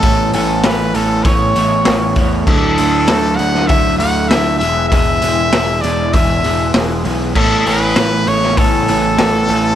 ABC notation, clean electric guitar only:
X:1
M:4/4
L:1/8
Q:1/4=98
K:A
V:1 name="Clean electric guitar"
[A,B,EAc] [A,B,EAc] [A,B,EAc] [A,B,EAc] [A,B,EAc] [A,B,EAc] [A,B,EAc] [A,B,EAc] | [D,F,DEA] [D,F,DEA] [D,F,DEA] [D,F,DEA] [D,F,DEA] [D,F,DEA] [D,F,DEA] [E,G,B,EG] | [E,G,B,EG] [E,G,B,EG] [E,G,B,EG] [E,G,B,EG] [E,G,B,EG] [E,G,B,EG] [E,G,B,EG] [E,G,B,EG] | [A,B,EAc] [A,B,EAc] [A,B,EAc] [A,B,EAc] [A,B,EAc] [A,B,EAc] [A,B,EAc] [A,B,EAc] |]